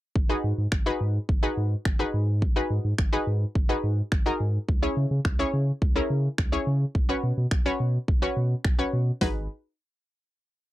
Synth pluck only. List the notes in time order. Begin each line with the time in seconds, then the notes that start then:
0.29 D#4 F#4 G#4 B4
0.86 D#4 F#4 G#4 B4
1.43 D#4 F#4 G#4 B4
1.99 D#4 F#4 G#4 B4
2.56 D#4 F#4 G#4 B4
3.13 D#4 F#4 G#4 B4
3.69 D#4 F#4 G#4 B4
4.26 D#4 F#4 G#4 A#4
4.82 C#4 E4 G#4 C#5
5.39 C#4 E4 G#4 C#5
5.96 C#4 E4 G#4 A#4
6.52 C#4 E4 G#4 C#5
7.09 C#4 F#4 B4 C#5
7.66 C#4 F#4 B4 C#5
8.22 C#4 F#4 B4 C#5
8.79 C#4 F#4 B4 C#5
9.21 D#4 F#4 G#4 B4